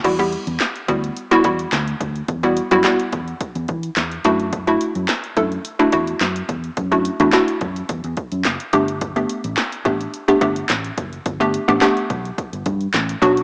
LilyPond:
<<
  \new Staff \with { instrumentName = "Synth pluck" } { \time 4/4 \key e \minor \tempo 4 = 107 <g b e' fis'>16 <g b e' g'>4 r16 <g b e' fis'>8 r16 <g b e' fis'>16 <g b e' fis'>4~ <g b e' fis'>16 r16 | r16 <g b e' fis'>16 r16 <g b e' fis'>16 <g b e' fis'>4. r4 <a d' e' fis'>8 | r16 <a d' e' fis'>4 r16 <a d' e' a'>8 r16 <a d' e' fis'>16 <a d' e' fis'>4~ <a d' e' fis'>16 r16 | r16 <a d' e' fis'>16 r16 <a d' e' fis'>16 <a d' e' fis'>4. r4 <a b d' g'>8 |
r16 <a b d' g'>4 r16 <a b d' g'>8 r16 <a b d' g'>16 <a b d' g'>4~ <a b d' g'>16 r16 | r16 <a b d' g'>16 r16 <a b d' g'>16 <a b d' g'>4. r4 <fis b d' fis'>8 | }
  \new Staff \with { instrumentName = "Fingered electric bass" } { \clef bass \time 4/4 \key e \minor e,8. e,16 r8 d,8 r8 e,8 d,8 d,8 | e,8. fis,16 r8 e,8 r16 e,16 e8 e,8 fis,8~ | fis,8. fis,16 r8 fis,8 r8 e,8 fis,8 e,8 | fis,8. e,16 r8 fis,8 e,16 e,16 r16 fis,16 fis,,16 r16 g,,8~ |
g,,8. a,,16 r8 a,,8 r8 g,,8 a,,8 fis,,8 | g,,8. a,,16 r8 b,,8 r16 g,,16 g,8 a,,8 b,,8 | }
  \new DrumStaff \with { instrumentName = "Drums" } \drummode { \time 4/4 <cymc hh bd>16 hh16 hh16 hh16 <hc hh sn>16 hh16 <hh bd>16 hh16 hh16 hh16 <hh bd>16 hh16 <hc hh sn>16 hh16 <hh bd>16 hh16 | <hh bd>16 hh16 hh16 hh16 <hc hh sn>16 hh16 <hh bd>16 hh16 <hh bd>16 hh16 <hh bd>16 hh16 <hc hh sn>16 hh16 hh16 hh16 | <hh bd>16 hh16 hh16 hh16 <hc hh sn>16 hh16 <hh bd>16 hh16 hh16 hh16 <hh bd>16 hh16 <hc hh sn>16 hh16 <hh bd>16 hh16 | <hh bd>16 hh16 hh16 hh16 <hc hh sn>16 hh16 <hh bd>16 hh16 <hh bd>16 hh16 <hh bd>16 hh16 <hc hh sn>16 hh16 hh16 hh16 |
<hh bd>16 hh16 hh16 hh16 <hc hh sn>16 hh16 <hh bd>16 hh16 hh16 hh16 <hh bd>16 hh16 <hc hh sn>16 hh16 <hh bd>16 hh16 | <hh bd>16 hh16 hh16 hh16 <hc hh sn>16 hh16 <hh bd>16 hh16 <hh bd>16 hh16 <hh bd>16 hh16 <hc hh sn>16 hh16 hh16 hh16 | }
>>